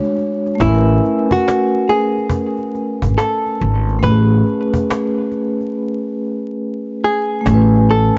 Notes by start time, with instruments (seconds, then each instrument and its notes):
Already playing: vibraphone G#3 D4 F#4 C#5
0.04 cajon slap
0.18 cajon slap
0.46 cajon slap
0.55 vibraphone A3
0.60 upright bass A1, vibraphone C#4, hollow-body jazz guitar E4, cajon bass
0.64 vibraphone G#5
0.68 vibraphone A#4
0.75 vibraphone B4
0.89 cajon slap
1.04 cajon slap
1.31 hollow-body jazz guitar F#4, cajon bass
1.48 cajon slap
1.75 cajon slap
1.89 hollow-body jazz guitar G#4, cajon slap
2.18 cajon slap
2.30 cajon bass
2.59 cajon slap
2.75 cajon slap
3.02 upright bass G#1, cajon bass
3.18 hollow-body jazz guitar A4, cajon slap
3.46 cajon slap
3.60 upright bass G#1, cajon slap
3.89 cajon slap
3.99 vibraphone A3, cajon bass
4.03 upright bass A1, vibraphone C#4, hollow-body jazz guitar B4
4.08 vibraphone G#4
4.12 vibraphone B4
4.32 cajon slap
4.47 cajon slap
4.74 cajon bass
4.90 cajon slap
5.18 cajon slap
5.31 cajon slap
5.61 cajon slap
7.04 hollow-body jazz guitar G#4
7.41 vibraphone A3
7.45 upright bass A1, vibraphone C#4, cajon bass
7.50 vibraphone G#5
7.54 vibraphone B4
7.75 cajon slap
7.90 hollow-body jazz guitar A4, cajon slap